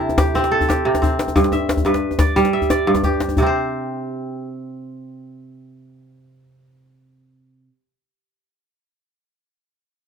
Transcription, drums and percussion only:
0.01 djembe slap
0.09 djembe slap, djembe tone
0.18 djembe slap, djembe bass
0.35 djembe tone
0.44 djembe slap
0.53 djembe slap
0.61 djembe bass
0.70 djembe slap, djembe tone
0.86 djembe slap
0.95 djembe slap, djembe tone
1.03 djembe bass
1.19 djembe slap
1.28 djembe slap, djembe tone
1.36 djembe bass
1.44 djembe slap
1.52 djembe tone
1.69 djembe slap
1.77 djembe slap, djembe bass
1.85 djembe slap, djembe tone
1.94 djembe slap
2.11 djembe tone
2.19 djembe slap, djembe bass
2.36 djembe tone
2.45 djembe slap
2.62 djembe bass
2.70 djembe slap, djembe tone
2.87 djembe slap
2.95 djembe slap, djembe tone
3.03 djembe slap, djembe bass
3.12 djembe slap
3.20 djembe slap
3.29 djembe tone
3.37 djembe bass

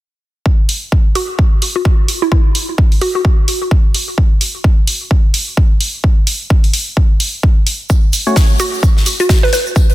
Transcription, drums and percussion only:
0.46 kick
0.69 open hi-hat
0.92 kick
1.15 open hi-hat
1.39 kick
1.62 open hi-hat
1.85 kick
2.08 open hi-hat
2.32 kick
2.55 open hi-hat
2.78 kick
2.92 open hi-hat
3.01 open hi-hat
3.25 kick
3.48 open hi-hat
3.71 kick
3.94 open hi-hat
4.18 kick
4.41 open hi-hat
4.64 kick
4.87 open hi-hat
5.11 kick
5.34 open hi-hat
5.57 kick
5.80 open hi-hat
6.04 kick
6.27 open hi-hat
6.50 kick
6.64 open hi-hat
6.74 open hi-hat
6.97 kick
7.20 open hi-hat
7.43 kick
7.67 open hi-hat
7.90 kick, tambourine, shaker
8.13 open hi-hat, tambourine, shaker
8.27 shaker
8.36 kick, snare, open hi-hat, shaker
8.60 open hi-hat, tambourine, shaker
8.74 shaker
8.83 kick, tambourine, shaker
8.97 snare
9.06 open hi-hat, tambourine, shaker
9.20 closed hi-hat, shaker
9.29 kick, snare, tambourine, shaker
9.43 snare
9.53 snare, open hi-hat, tambourine, shaker
9.66 shaker
9.76 kick, tambourine, shaker
9.90 closed hi-hat

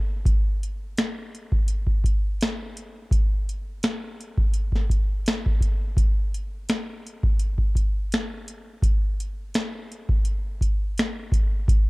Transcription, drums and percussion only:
0.25 kick, closed hi-hat
0.63 closed hi-hat
0.97 finger snap, snare, closed hi-hat
1.35 closed hi-hat
1.52 kick
1.68 closed hi-hat
1.87 kick
2.04 kick, closed hi-hat
2.41 finger snap, snare, closed hi-hat
2.77 closed hi-hat
3.11 kick, closed hi-hat
3.49 closed hi-hat
3.83 finger snap, snare, closed hi-hat
4.21 closed hi-hat
4.38 kick
4.54 closed hi-hat
4.72 kick, snare
4.90 kick, closed hi-hat
5.26 finger snap, snare, closed hi-hat
5.46 kick
5.61 kick, closed hi-hat
5.97 kick, closed hi-hat
6.34 closed hi-hat
6.69 finger snap, snare, closed hi-hat
7.07 closed hi-hat
7.23 kick
7.39 closed hi-hat
7.58 kick
7.75 kick, closed hi-hat
8.12 finger snap, snare, closed hi-hat
8.48 closed hi-hat
8.82 kick, closed hi-hat
9.20 closed hi-hat
9.54 finger snap, snare, closed hi-hat
9.92 closed hi-hat
10.09 kick
10.25 closed hi-hat
10.61 kick, closed hi-hat
10.98 finger snap, snare, closed hi-hat
11.32 kick, closed hi-hat
11.68 kick, closed hi-hat

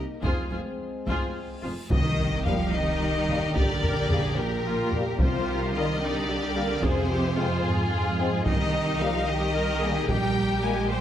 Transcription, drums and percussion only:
0.23 taiko
1.07 taiko
1.91 taiko
2.19 taiko low
2.46 taiko low
3.29 taiko low
3.56 taiko
3.83 taiko low
4.10 taiko low
4.92 taiko low
5.19 taiko
6.83 taiko
8.46 taiko
10.09 taiko

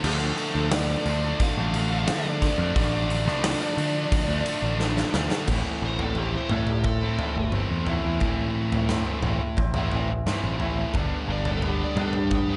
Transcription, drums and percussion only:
0.04 crash
0.38 open hi-hat
0.71 snare, open hi-hat
1.06 open hi-hat
1.40 kick, open hi-hat
1.74 open hi-hat
2.08 snare, open hi-hat
2.42 kick, snare, open hi-hat
2.76 kick, open hi-hat
3.10 open hi-hat
3.28 snare
3.44 snare, open hi-hat
3.78 open hi-hat
4.12 kick, open hi-hat
4.46 open hi-hat
4.80 snare
4.97 snare
5.14 snare
5.31 snare
5.47 kick, floor tom, crash
5.99 floor tom
6.15 floor tom
6.49 floor tom, mid tom
6.67 floor tom
6.84 kick, floor tom
7.19 floor tom
7.52 mid tom
7.87 floor tom
8.20 kick, floor tom
8.72 floor tom
8.89 snare, floor tom, mid tom
9.22 floor tom, mid tom
9.57 kick, floor tom
9.74 floor tom, mid tom
9.91 floor tom
10.27 snare, mid tom
10.60 floor tom
10.94 kick, floor tom
11.45 floor tom
11.62 floor tom
11.97 floor tom, mid tom
12.13 floor tom
12.31 kick, floor tom

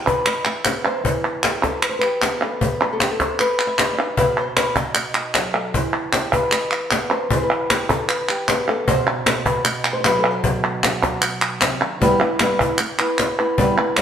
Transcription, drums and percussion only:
0.06 cajon bass, clap
0.26 clap
0.45 clap
0.65 cajon slap, clap
0.85 cajon slap, clap
1.05 cajon bass
1.24 cajon slap
1.43 cajon slap, clap
1.63 cajon bass, cajon slap, clap
1.82 clap
2.02 clap
2.22 cajon slap, clap
2.41 cajon slap, clap
2.61 cajon bass
2.81 cajon slap
3.00 cajon slap, clap
3.20 cajon bass, cajon slap, clap
3.39 clap
3.59 clap
3.78 cajon slap, clap
3.99 clap
4.17 cajon bass
4.56 cajon slap, clap
4.76 cajon bass, clap
4.95 clap
5.15 clap
5.34 cajon slap, clap
5.54 clap
5.74 cajon bass
6.13 cajon slap, clap
6.32 cajon bass, clap
6.51 clap
6.71 clap
6.91 cajon slap, clap
7.11 cajon slap
7.31 cajon bass
7.70 cajon slap, clap
7.90 cajon bass, clap
8.09 clap
8.29 clap
8.48 cajon slap, clap
8.68 cajon slap, clap
8.88 cajon bass
9.26 cajon slap, clap
9.46 cajon bass
9.65 clap
9.85 clap
10.04 cajon slap, clap
10.24 clap
10.44 cajon bass
10.83 cajon slap, clap
11.03 cajon bass, cajon slap, clap
11.22 clap
11.42 clap
11.61 cajon slap, clap
11.81 cajon slap, clap
12.02 cajon bass
12.21 cajon slap
12.39 cajon slap, clap
12.61 cajon bass
12.78 clap
12.99 clap
13.18 cajon slap, clap
13.39 cajon slap, clap
13.58 cajon bass
13.96 cajon slap, clap

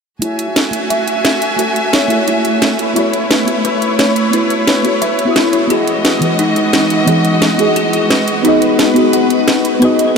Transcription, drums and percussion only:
0.22 closed hi-hat
0.39 closed hi-hat
0.56 snare, closed hi-hat
0.73 closed hi-hat
0.90 closed hi-hat
1.08 closed hi-hat
1.25 snare, closed hi-hat
1.42 closed hi-hat
1.59 closed hi-hat
1.76 closed hi-hat
1.93 snare, closed hi-hat
2.10 closed hi-hat
2.28 closed hi-hat
2.45 closed hi-hat
2.62 snare, closed hi-hat
2.79 closed hi-hat
2.96 closed hi-hat
3.13 closed hi-hat
3.31 snare, closed hi-hat
3.48 closed hi-hat
3.65 closed hi-hat
3.82 closed hi-hat
3.99 snare, closed hi-hat
4.16 closed hi-hat
4.33 closed hi-hat
4.50 closed hi-hat
4.67 snare, closed hi-hat
4.85 closed hi-hat
5.02 closed hi-hat
5.19 closed hi-hat
5.36 snare, closed hi-hat
5.53 closed hi-hat
5.70 closed hi-hat
5.87 closed hi-hat
6.05 snare, closed hi-hat
6.22 closed hi-hat
6.39 closed hi-hat
6.56 closed hi-hat
6.73 snare, closed hi-hat
6.90 closed hi-hat
7.07 closed hi-hat
7.25 closed hi-hat
7.42 snare, closed hi-hat
7.59 closed hi-hat
7.76 closed hi-hat
7.93 closed hi-hat
8.11 snare, closed hi-hat
8.28 closed hi-hat
8.45 closed hi-hat
8.62 closed hi-hat
8.79 snare, closed hi-hat
8.96 closed hi-hat
9.13 closed hi-hat
9.30 closed hi-hat
9.48 snare, closed hi-hat
9.65 closed hi-hat
9.82 closed hi-hat
9.99 closed hi-hat

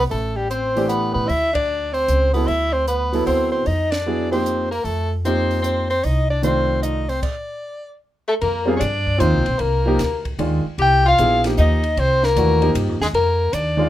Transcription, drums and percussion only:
0.11 open hi-hat
0.51 closed hi-hat
0.77 open hi-hat
0.89 closed hi-hat
1.29 open hi-hat
1.55 kick, ride
1.94 open hi-hat
2.08 closed hi-hat
2.34 open hi-hat
2.48 open hi-hat
2.88 closed hi-hat
3.13 open hi-hat
3.27 open hi-hat
3.66 open hi-hat
3.92 snare, ride
4.33 open hi-hat
4.46 closed hi-hat
4.72 open hi-hat
4.85 open hi-hat
5.25 closed hi-hat
5.51 open hi-hat
5.64 closed hi-hat
5.91 open hi-hat
6.04 open hi-hat
6.43 closed hi-hat
6.83 closed hi-hat
7.09 open hi-hat
7.23 kick, crash
8.41 ride
8.81 hi-hat pedal, ride
9.07 kick
9.20 hi-hat pedal, ride
9.46 ride
9.59 ride
9.99 snare, hi-hat pedal, ride
10.25 kick, ride
10.39 ride
10.78 ride
11.18 hi-hat pedal, ride
11.44 snare, ride
11.57 hi-hat pedal
11.84 ride
11.97 ride
12.23 snare
12.36 hi-hat pedal, ride
12.62 ride
12.75 hi-hat pedal, ride
13.01 snare
13.14 ride
13.53 hi-hat pedal, ride

